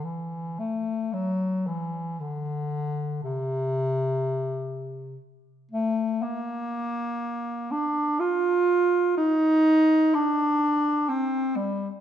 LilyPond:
\new Staff \with { instrumentName = "Bass clarinet" } { \time 3/4 \key d \phrygian \tempo 4 = 60 e8 a8 fis8 e8 d4 | c2 r8 a8 | bes4. d'8 f'4 | ees'4 d'4 c'8 g8 | }